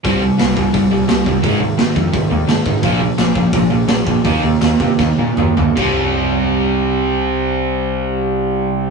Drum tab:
CC |--------|--------|--------|--------|
HH |o-o-o-o-|o-o-o-o-|o-o-o-o-|o-o-----|
SD |--o---o-|--o---o-|--o---o-|--o-o---|
T2 |--------|--------|--------|------o-|
FT |--------|--------|--------|-------o|
BD |o--oo--o|o--oo--o|o--oo--o|o--oo---|

CC |x-------|--------|
HH |--------|--------|
SD |--------|--------|
T2 |--------|--------|
FT |--------|--------|
BD |o-------|--------|